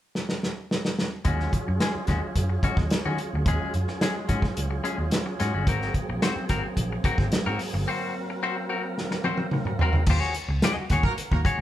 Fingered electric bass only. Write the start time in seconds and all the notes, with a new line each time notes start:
1.26 D#2
1.68 F#2
1.95 muted fingered electric bass stroke
2.08 D#2
2.36 F#2
2.77 D#2
3.06 D#3
3.33 D2
3.46 D#2
3.74 F#2
4.30 G#2
4.58 C#2
4.98 D#2
5.40 G#2
5.54 G1
5.67 G#1
6.09 A#1
6.36 muted fingered electric bass stroke
6.50 G#1
6.77 A#1
7.18 G#1
7.46 G#2
7.73 G1
10.08 D#2
10.48 C#2
10.76 muted fingered electric bass stroke
10.91 D#2
11.32 D#2
11.57 C#2